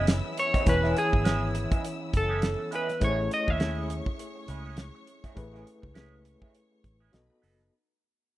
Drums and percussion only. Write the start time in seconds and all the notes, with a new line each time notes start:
0.07 snare, closed hi-hat
0.37 closed hi-hat
0.54 kick, snare, closed hi-hat
0.66 kick, closed hi-hat
0.84 snare
0.97 closed hi-hat
1.13 kick
1.25 snare, closed hi-hat
1.55 closed hi-hat
1.72 kick, closed hi-hat
1.85 closed hi-hat
2.13 kick, closed hi-hat
2.42 snare, closed hi-hat
2.72 closed hi-hat
2.89 snare, closed hi-hat
3.01 kick, closed hi-hat
3.31 closed hi-hat
3.48 kick
3.60 snare, closed hi-hat
3.90 closed hi-hat
4.06 kick
4.19 closed hi-hat
4.48 closed hi-hat
4.77 snare, closed hi-hat
5.07 closed hi-hat
5.24 kick, snare, closed hi-hat
5.37 kick, closed hi-hat
5.55 snare
5.67 closed hi-hat
5.83 kick
5.95 snare, closed hi-hat
6.25 closed hi-hat
6.42 kick
6.55 closed hi-hat
6.84 kick, closed hi-hat
7.13 snare, closed hi-hat
7.43 open hi-hat
7.60 snare, closed hi-hat